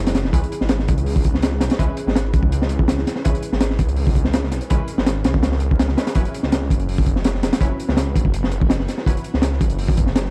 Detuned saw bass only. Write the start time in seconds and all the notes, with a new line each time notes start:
Already playing: F#1
0.25 E1
0.33 C#2
0.61 G#1
0.89 C#2
1.61 B1
1.79 C#2
2.07 G#1
2.34 C#2
3.26 C#2
3.52 G#1
3.79 C#2
4.52 B1
4.71 C#2
4.98 G#1
5.25 C#2
6.16 F#1
6.44 C#2
6.70 F#1
7.43 E1
7.61 F#1
7.89 C#2
8.16 F#1
9.07 F#1
9.34 C#2
9.61 F#1